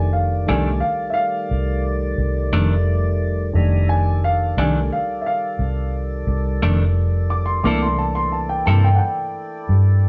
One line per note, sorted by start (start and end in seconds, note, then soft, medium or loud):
0.00 0.45 F1 loud
0.00 0.45 D#3 soft
0.00 3.53 D#3 medium
0.00 0.46 G3 soft
0.00 3.52 G3 medium
0.00 0.46 A3 soft
0.00 3.53 A3 medium
0.00 0.45 D4 soft
0.00 3.53 D5 medium
0.00 0.14 G#5 medium
0.13 0.47 F5 medium
0.46 0.81 C2 medium
0.46 0.70 F2 medium
0.46 0.78 D#3 soft
0.46 0.70 D#3 medium
0.46 0.79 G3 soft
0.46 0.79 A3 soft
0.46 0.70 A3 medium
0.46 0.79 D4 soft
0.46 0.70 D4 medium
0.46 0.82 G#5 medium
0.80 1.12 F5 medium
1.10 1.15 E5 medium
1.10 1.82 F5 medium
1.51 2.15 C2 medium
2.18 2.50 C2 medium
2.52 3.51 F1 medium
2.52 2.75 F2 medium
2.52 2.74 D#3 medium
2.52 2.74 A3 medium
2.52 2.74 D4 medium
3.53 4.54 F1 medium
3.53 4.53 D#3 soft
3.53 4.53 G3 soft
3.53 4.53 A3 soft
3.53 4.54 D4 soft
3.53 3.86 D5 medium
3.53 3.90 E5 medium
3.53 3.90 G#5 medium
3.53 3.90 A#5 medium
3.87 7.61 D#3 medium
3.87 7.60 G3 medium
3.87 7.60 A4 medium
3.87 7.60 D5 medium
3.87 4.23 G#5 medium
4.24 4.57 F5 medium
4.57 4.89 C2 medium
4.57 4.80 F2 soft
4.57 4.89 D#3 soft
4.57 4.80 D#3 medium
4.57 4.89 G3 soft
4.57 4.89 A3 soft
4.57 4.79 A3 medium
4.57 4.79 D4 medium
4.57 4.90 D4 soft
4.57 4.92 G#5 medium
4.92 5.25 F5 medium
5.22 5.26 E5 medium
5.26 5.93 F5 medium
5.59 6.24 C2 medium
6.27 6.59 C2 medium
6.62 7.61 F1 medium
6.62 6.84 F2 medium
6.62 6.84 D#3 medium
6.62 6.83 A3 medium
6.62 6.84 D4 medium
7.30 7.47 D6 medium
7.46 7.63 C6 medium
7.61 8.63 C2 medium
7.61 7.86 C3 medium
7.61 10.09 E3 soft
7.61 10.09 A3 soft
7.61 10.09 A#3 soft
7.61 10.09 D4 soft
7.61 10.09 E4 medium
7.61 10.09 A4 medium
7.61 10.09 D5 medium
7.61 7.81 D6 medium
7.65 7.86 A#3 medium
7.65 7.87 E4 medium
7.65 7.87 A4 medium
7.82 7.98 C6 medium
7.98 8.15 A5 medium
8.15 8.32 C6 medium
8.32 8.49 A5 medium
8.49 8.66 G5 medium
8.66 8.99 G2 medium
8.66 8.89 C3 medium
8.66 8.89 A#3 medium
8.66 8.88 E4 medium
8.66 8.88 A4 medium
8.66 8.83 A5 medium
8.84 8.97 G5 medium
8.95 9.00 F#5 medium
8.95 10.09 G5 medium
9.69 10.09 G2 medium